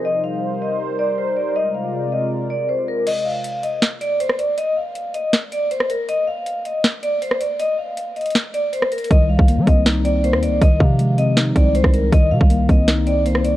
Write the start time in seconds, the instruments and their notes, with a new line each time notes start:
Already playing: analog synth pad D#4
0.05 analog synth pad G3 A#4 C5, vibraphone D#5
0.24 vibraphone F5
0.62 vibraphone D#5
0.99 vibraphone D5
1.18 vibraphone C5
1.37 vibraphone D5
1.56 analog synth pad C3 G#3 F4 D5, vibraphone D#5
1.75 vibraphone F5
2.12 vibraphone D#5
2.50 vibraphone D5
2.69 vibraphone C5
2.88 vibraphone A#4
3.07 vibraphone D#5, closed hi-hat, crash
3.25 vibraphone F5
3.44 closed hi-hat
3.63 vibraphone D#5, closed hi-hat
3.82 snare, closed hi-hat
4.01 vibraphone D5, closed hi-hat
4.20 vibraphone C5, closed hi-hat
4.29 cross-stick
4.39 vibraphone D5, closed hi-hat
4.58 vibraphone D#5, closed hi-hat
4.77 vibraphone F5
4.95 closed hi-hat
5.14 vibraphone D#5, closed hi-hat
5.33 snare, closed hi-hat
5.52 vibraphone D5, closed hi-hat
5.71 vibraphone C5, closed hi-hat
5.80 cross-stick
5.90 vibraphone A#4, closed hi-hat
6.09 vibraphone D#5, closed hi-hat
6.27 vibraphone F5
6.46 closed hi-hat
6.65 vibraphone D#5, closed hi-hat
6.84 snare, closed hi-hat
7.03 vibraphone D5, closed hi-hat
7.22 vibraphone C5, closed hi-hat
7.31 cross-stick
7.40 vibraphone D5, closed hi-hat
7.60 vibraphone D#5, closed hi-hat
7.78 vibraphone F5
7.97 closed hi-hat
8.16 vibraphone D#5, closed hi-hat
8.21 closed hi-hat
8.26 closed hi-hat
8.30 closed hi-hat
8.35 snare, closed hi-hat
8.54 vibraphone D5, closed hi-hat
8.73 vibraphone C5, closed hi-hat
8.82 cross-stick
8.92 vibraphone A#4, closed hi-hat
8.98 closed hi-hat
9.04 closed hi-hat
9.10 808-style bass C2, tine electric piano D#3, vibraphone D#5, kick, closed hi-hat
9.29 tine electric piano G3, vibraphone F5
9.39 808-style bass C2, kick
9.48 tine electric piano A#3, closed hi-hat
9.58 808-style bass G3
9.66 808-style bass C2, tine electric piano C4, vibraphone D#5, kick, closed hi-hat
9.86 tine electric piano D#4, snare, closed hi-hat
10.05 tine electric piano C4, vibraphone D5, closed hi-hat
10.24 tine electric piano A#3, vibraphone C5, closed hi-hat
10.33 808-style bass D#2, cross-stick
10.42 vibraphone D5, closed hi-hat
10.47 808-style bass C2
10.61 808-style bass C2, tine electric piano D#3, vibraphone D#5, kick, closed hi-hat
10.80 808-style bass C3, tine electric piano F3, vibraphone F5, kick
10.99 tine electric piano G#3, closed hi-hat
11.18 tine electric piano C4, vibraphone D#5, closed hi-hat
11.37 tine electric piano D#4, snare, closed hi-hat
11.56 808-style bass C2, tine electric piano C4, vibraphone D5, kick, closed hi-hat
11.75 tine electric piano G#3, vibraphone C5, closed hi-hat
11.84 808-style bass C2, kick, cross-stick
11.94 vibraphone A#4, closed hi-hat
12.12 808-style bass C2, tine electric piano D#3, vibraphone D#5, kick, closed hi-hat
12.31 808-style bass C3, tine electric piano G3, vibraphone F5
12.41 808-style bass C2, kick
12.50 tine electric piano A#3, closed hi-hat
12.69 808-style bass C2, tine electric piano C4, vibraphone D#5, kick, closed hi-hat
12.87 tine electric piano D#4, snare, closed hi-hat
13.07 tine electric piano C4, vibraphone D5, closed hi-hat
13.26 tine electric piano A#3, vibraphone C5, closed hi-hat
13.35 cross-stick
13.44 vibraphone D5, closed hi-hat